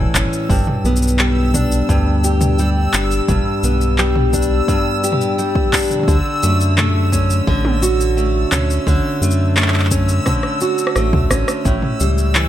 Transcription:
0.00 0.50 A2 medium
0.00 0.57 E3 medium
0.00 0.85 G3 medium
0.00 0.14 C#4 medium
0.00 0.57 A4 medium
0.00 11.67 E6 medium
0.15 0.28 G1 medium
0.15 0.57 C#4 medium
0.15 kick medium
0.15 clap medium
0.15 shaker medium
0.33 shaker soft
0.49 0.63 G1 loud
0.49 1.88 G2 medium
0.49 kick loud
0.49 shaker soft
0.53 shaker soft
0.55 shaker soft
0.60 shaker soft
0.63 shaker soft
0.65 mid tom medium
0.65 shaker soft
0.84 1.83 B1 loud
0.84 3.63 B3 medium
0.84 shaker soft
0.96 shaker soft
1.02 shaker soft
1.08 shaker medium
1.19 2.58 G3 medium
1.19 clap medium
1.19 shaker soft
1.54 2.94 D4 medium
1.54 kick medium
1.54 mid tom medium
1.54 shaker medium
1.72 shaker soft
1.89 2.88 D2 medium
1.89 3.28 G2 medium
1.89 kick medium
1.89 shaker soft
2.24 5.02 G4 medium
2.24 shaker medium
2.41 mid tom medium
2.41 shaker soft
2.59 3.97 G3 medium
2.59 shaker soft
2.94 3.21 G1 medium
2.94 4.33 D4 medium
2.94 clap medium
2.94 shaker medium
3.11 shaker soft
3.28 3.42 G1 loud
3.28 4.67 G2 medium
3.28 kick loud
3.28 mid tom medium
3.28 shaker soft
3.63 4.62 B1 medium
3.63 6.15 B3 medium
3.63 shaker medium
3.81 shaker soft
3.98 5.37 G3 medium
3.98 clap medium
3.98 shaker soft
4.16 mid tom medium
4.33 5.73 D4 medium
4.33 kick medium
4.33 shaker medium
4.42 shaker soft
4.68 6.15 G2 medium
4.68 kick medium
4.68 shaker soft
5.04 6.15 G4 medium
5.04 shaker medium
5.12 mid tom medium
5.21 shaker soft
5.38 6.08 G3 medium
5.38 shaker soft
5.55 kick loud
5.73 7.12 D4 medium
5.73 kick medium
5.73 clap medium
5.73 shaker medium
5.76 shaker medium
5.79 shaker soft
5.82 shaker soft
5.85 shaker soft
5.88 mid tom soft
5.88 shaker soft
5.91 mid tom soft
5.91 shaker soft
5.99 mid tom medium
6.03 mid tom medium
6.08 6.22 D2 loud
6.08 7.46 D3 medium
6.08 kick loud
6.08 shaker soft
6.43 7.42 F#2 loud
6.43 6.77 A3 medium
6.43 shaker medium
6.61 shaker soft
6.78 8.17 A3 medium
6.78 clap medium
6.78 mid tom medium
6.78 shaker soft
7.12 8.52 C#4 medium
7.12 kick medium
7.12 shaker medium
7.30 shaker soft
7.47 8.46 A1 medium
7.47 8.86 D3 medium
7.47 kick medium
7.65 mid tom medium
7.82 10.60 F#4 medium
7.82 shaker medium
8.01 shaker soft
8.17 9.21 A3 medium
8.17 shaker soft
8.52 8.79 D2 medium
8.52 9.91 C#4 medium
8.52 clap medium
8.52 mid tom medium
8.52 shaker medium
8.70 shaker soft
8.87 9.01 D2 loud
8.87 10.25 D3 medium
8.87 kick loud
8.87 shaker soft
9.21 10.20 F#2 medium
9.21 9.56 A3 medium
9.21 shaker medium
9.31 shaker soft
9.56 10.95 A3 medium
9.56 clap medium
9.56 shaker soft
9.62 clap medium
9.68 clap soft
9.74 clap soft
9.80 clap soft
9.85 clap soft
9.91 11.30 C#4 medium
9.91 kick medium
9.91 shaker medium
10.09 shaker soft
10.26 11.73 D3 medium
10.26 kick medium
10.26 cross-stick medium
10.26 mid tom medium
10.26 shaker soft
10.43 cross-stick soft
10.61 11.73 F#4 medium
10.61 shaker medium
10.78 shaker soft
10.87 cross-stick medium
10.96 11.15 A1 medium
10.96 12.00 A3 medium
10.96 cross-stick medium
10.96 shaker soft
11.13 11.27 D2 medium
11.13 kick medium
11.13 mid tom medium
11.30 11.44 A1 medium
11.30 12.03 C#4 medium
11.30 kick medium
11.30 cross-stick medium
11.30 shaker medium
11.48 cross-stick medium
11.48 shaker soft
11.65 11.79 A1 loud
11.65 12.48 A2 medium
11.65 12.48 A6 medium
11.65 kick loud
11.65 shaker soft
11.82 mid tom medium
12.00 12.48 C#2 loud
12.00 12.48 G3 medium
12.00 shaker medium
12.18 shaker soft
12.35 12.48 E3 medium
12.35 clap medium
12.35 shaker soft

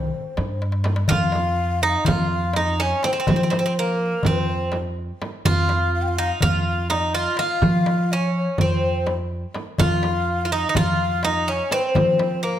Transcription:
0.00 0.58 C4 medium
0.00 0.62 C5 medium
0.37 1.00 G2 medium
0.37 darbuka tek medium
0.37 frame drum medium
0.62 darbuka tek soft
0.72 darbuka ka medium
0.84 darbuka tek medium
0.84 frame drum medium
0.96 darbuka ka medium
1.08 1.94 F2 medium
1.08 1.82 F4 medium
1.08 1.84 F5 medium
1.08 darbuka dum medium
1.08 frame drum medium
1.32 darbuka tek medium
1.32 frame drum medium
1.82 2.06 D#4 medium
1.82 1.91 D#5 medium
1.89 1.98 F5 medium
1.96 2.09 D#5 medium
2.05 2.91 F2 medium
2.05 2.51 F4 medium
2.05 2.31 F5 medium
2.05 darbuka dum medium
2.05 frame drum medium
2.31 2.58 F5 medium
2.53 2.81 D#4 medium
2.53 2.82 D#5 medium
2.53 darbuka tek medium
2.53 frame drum medium
2.80 3.04 C#4 medium
2.80 3.07 C#5 medium
3.03 3.12 C4 medium
3.03 3.53 C5 medium
3.03 darbuka tek medium
3.03 frame drum medium
3.13 3.18 C4 medium
3.20 3.26 C4 medium
3.27 4.12 F3 loud
3.27 3.35 C4 soft
3.27 darbuka dum medium
3.27 frame drum medium
3.36 3.42 C4 medium
3.43 3.49 C4 soft
3.50 3.57 C4 medium
3.50 3.80 C5 medium
3.50 darbuka tek medium
3.50 frame drum medium
3.59 3.65 C4 medium
3.66 3.73 C4 medium
3.78 4.26 A#3 medium
3.78 4.27 A#4 medium
4.23 5.09 F2 medium
4.23 4.76 C4 medium
4.23 4.80 C5 medium
4.23 darbuka dum medium
4.23 frame drum medium
4.72 darbuka tek medium
4.72 frame drum medium
5.22 darbuka tek medium
5.22 frame drum medium
5.45 6.29 F2 medium
5.45 6.18 F4 loud
5.45 5.91 F5 medium
5.45 frame drum medium
5.45 darbuka dum medium
5.69 darbuka tek medium
5.69 frame drum medium
5.94 6.04 F5 medium
6.02 6.10 G5 medium
6.08 6.41 F5 medium
6.18 6.42 D#4 medium
6.41 7.26 F2 medium
6.41 6.87 F4 loud
6.41 6.64 F5 medium
6.41 darbuka dum medium
6.41 frame drum medium
6.67 6.93 F5 medium
6.90 7.13 D#4 medium
6.90 7.42 D#5 medium
6.90 darbuka tek medium
6.90 frame drum medium
7.15 7.38 F4 medium
7.37 8.13 F4 medium
7.37 darbuka tek medium
7.37 frame drum medium
7.41 8.13 F5 medium
7.62 8.46 F3 loud
7.62 frame drum medium
7.62 darbuka dum medium
7.86 darbuka tek medium
7.86 frame drum medium
8.10 8.61 C#4 medium
8.10 8.35 C#5 medium
8.10 darbuka ka soft
8.35 8.61 C#5 medium
8.35 darbuka ka soft
8.58 9.42 F2 medium
8.58 9.11 C4 medium
8.58 9.14 C5 medium
8.58 darbuka dum medium
8.58 frame drum medium
9.06 darbuka tek medium
9.06 frame drum medium
9.54 darbuka tek medium
9.54 frame drum medium
9.78 10.63 F2 medium
9.78 10.42 F4 medium
9.78 10.54 F5 medium
9.78 darbuka dum medium
9.78 frame drum medium
10.03 darbuka tek medium
10.03 frame drum medium
10.45 10.51 F4 medium
10.52 10.68 D#4 medium
10.52 10.78 D#5 medium
10.69 10.76 D#4 medium
10.75 11.59 F2 medium
10.75 11.24 F4 medium
10.75 11.26 F5 medium
10.75 darbuka dum medium
10.75 frame drum medium
11.23 11.49 D#4 medium
11.23 11.50 D#5 medium
11.23 darbuka tek medium
11.23 frame drum medium
11.48 11.72 C#4 medium
11.48 11.74 C#5 medium
11.71 12.42 C4 medium
11.71 11.83 B4 medium
11.71 darbuka tek medium
11.71 frame drum medium
11.83 12.46 C5 medium
11.95 12.59 F3 loud
11.95 darbuka dum medium
11.95 frame drum medium
12.19 darbuka tek medium
12.19 frame drum medium
12.43 12.59 A#3 medium
12.43 12.59 A#4 medium

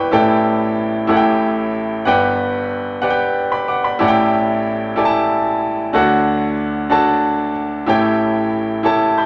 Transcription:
0.00 0.15 G1 medium
0.00 0.15 G2 medium
0.00 0.11 E4 medium
0.00 0.12 G4 medium
0.00 0.28 B4 medium
0.00 0.13 D5 medium
0.00 0.15 E5 medium
0.00 0.15 F#5 soft
0.00 0.14 G5 loud
0.00 0.15 B5 medium
0.00 0.15 C#6 medium
0.00 0.15 D6 medium
0.11 1.05 A1 medium
0.11 1.05 A2 medium
0.11 0.72 E4 medium
0.11 0.72 G4 medium
0.11 0.72 A4 medium
0.11 0.72 D5 medium
0.11 0.73 G5 medium
1.07 2.02 A1 medium
1.07 2.02 A2 medium
1.07 1.68 E4 medium
1.07 1.68 G4 medium
1.07 1.69 A4 medium
1.07 1.69 C#5 medium
1.07 1.17 F#5 medium
1.17 1.73 G5 medium
2.05 3.96 G1 medium
2.05 3.96 G2 medium
2.05 2.66 G4 medium
2.05 2.66 B4 medium
2.05 2.66 D5 medium
2.05 2.65 F#5 medium
2.05 2.67 G5 medium
3.02 3.62 G4 medium
3.02 3.63 B4 medium
3.02 3.36 D5 medium
3.02 3.03 F#5 medium
3.02 3.10 F#5 medium
3.10 3.39 G5 medium
3.52 3.67 D5 medium
3.52 3.67 B5 medium
3.68 3.84 F#5 medium
3.68 3.83 D6 medium
3.84 3.99 D5 soft
3.84 4.15 B5 medium
3.99 5.90 A1 medium
3.99 5.90 A2 medium
3.99 4.59 E4 medium
3.99 4.59 G4 medium
3.99 4.60 A4 medium
3.99 4.60 D5 medium
3.99 4.07 F#5 medium
4.08 4.64 G5 loud
4.96 5.56 E4 medium
4.96 5.56 G4 medium
4.96 5.56 A4 medium
4.96 5.57 D5 medium
4.96 5.04 G#5 medium
5.05 5.61 A5 medium
5.93 7.84 D2 medium
5.93 7.84 D3 medium
5.93 6.53 D4 medium
5.93 6.53 F#4 medium
5.93 6.53 A4 medium
5.93 6.54 C#5 medium
5.93 6.54 F#5 medium
6.90 7.50 D4 medium
6.90 7.50 F#4 medium
6.90 7.50 A4 medium
6.90 7.51 C#5 medium
6.90 7.51 A5 medium
7.86 9.26 A1 medium
7.86 9.26 A2 medium
7.86 8.47 E4 medium
7.86 8.47 G4 medium
7.86 8.48 A4 medium
7.86 8.48 C#5 medium
7.86 8.48 G5 medium
8.83 9.26 E4 medium
8.83 9.26 G4 medium
8.83 9.26 A4 medium
8.83 9.26 C#5 medium
8.83 9.18 A5 medium
9.18 9.26 B5 soft
9.18 9.26 G6 medium

